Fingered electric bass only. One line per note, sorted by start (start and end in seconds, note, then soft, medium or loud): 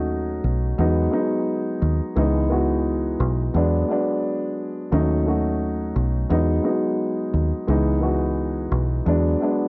0.00 0.40 D#2 loud
0.44 0.73 B1 medium
0.78 1.07 E2 loud
1.82 1.99 D#2 medium
2.16 3.16 C#2 loud
3.20 3.49 B1 medium
3.54 3.83 E2 loud
4.92 5.92 D#2 loud
5.96 6.24 B1 medium
6.30 6.59 E2 loud
7.34 7.51 D#2 medium
7.68 8.68 C#2 loud
8.72 9.00 B1 medium
9.06 9.35 E2 loud